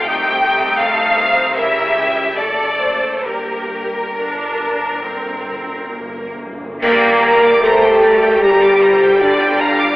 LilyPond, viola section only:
\new Staff \with { instrumentName = "Viola section" } { \time 4/4 \key g \minor \tempo 4 = 74 << { ees'8 ees'4. e'4 a'4 | g'4 d'4 c'4 bes4 | g'1 | } \\ { a2 g4 a4 | bes4 r2. | g1 | } >> }